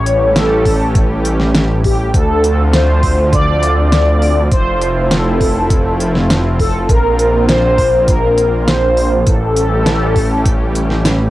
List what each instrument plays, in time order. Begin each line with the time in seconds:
Already playing: detuned saw bass A1, analog synth pad E3 G3 A3 C#4 G4, analog polysynth C#5
0.06 closed hi-hat
0.36 analog polysynth A4, snare, closed hi-hat
0.65 kick, open hi-hat
0.95 kick, closed hi-hat
1.25 closed hi-hat
1.40 snare
1.55 snare, closed hi-hat
1.84 analog polysynth G4, kick, open hi-hat
2.14 detuned saw bass D2, analog synth pad D3 F3 A3 C4 F4, analog polysynth A4, kick, closed hi-hat
2.44 closed hi-hat
2.73 analog polysynth C5, snare, closed hi-hat
3.03 kick, open hi-hat
3.33 analog polysynth D5, kick, closed hi-hat
3.63 closed hi-hat
3.92 analog polysynth D5, snare, closed hi-hat
4.22 open hi-hat
4.51 detuned saw bass F1, analog synth pad A3 E4 F4, analog polysynth C5, kick, closed hi-hat
4.81 closed hi-hat
5.11 analog polysynth A4, snare, closed hi-hat
5.41 kick, open hi-hat
5.70 kick, closed hi-hat
6.00 closed hi-hat
6.15 snare
6.30 snare, closed hi-hat
6.60 analog polysynth A4, kick, open hi-hat
6.89 detuned saw bass A#1, analog synth pad A#3, analog polysynth A#4, kick, closed hi-hat
7.19 closed hi-hat
7.49 analog polysynth C5, snare, closed hi-hat
7.78 kick, open hi-hat
8.08 analog polysynth A#4, kick, closed hi-hat
8.38 closed hi-hat
8.68 analog polysynth C5, snare, closed hi-hat
8.97 open hi-hat
9.27 detuned saw bass A1, analog synth pad E3 G3 A3 C#4 G4, analog polysynth A4, kick, closed hi-hat
9.57 closed hi-hat
9.86 snare, closed hi-hat
10.16 kick, open hi-hat
10.46 kick, closed hi-hat
10.75 closed hi-hat
10.90 snare
11.05 snare, closed hi-hat